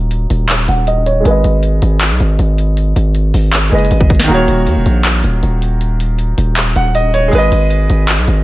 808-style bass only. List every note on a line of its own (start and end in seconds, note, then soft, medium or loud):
0.00 0.27 D#1 loud
0.30 0.67 D#1 loud
0.68 1.23 D#1 loud
1.25 1.43 G#1 loud
1.44 1.81 G#1 loud
1.82 2.12 G#1 loud
2.11 2.20 B1 loud
2.20 2.38 G#1 loud
2.39 2.94 G#1 loud
2.96 3.33 G#1 loud
3.34 3.71 G#1 loud
3.72 3.90 F#1 loud
3.91 4.28 G#1 loud
4.29 4.47 D#1 loud
4.48 4.69 D#1 loud
4.67 4.78 D#2 loud
4.76 4.86 D#1 loud
4.86 5.22 A#1 loud
5.24 5.42 D#1 loud
5.43 6.34 D#1 loud
6.38 6.74 D#1 loud
6.76 7.30 D#1 loud
7.33 7.51 G#1 loud
7.52 7.88 G#1 loud
7.90 8.20 G#1 loud
8.18 8.27 B1 loud
8.28 8.44 G#1 loud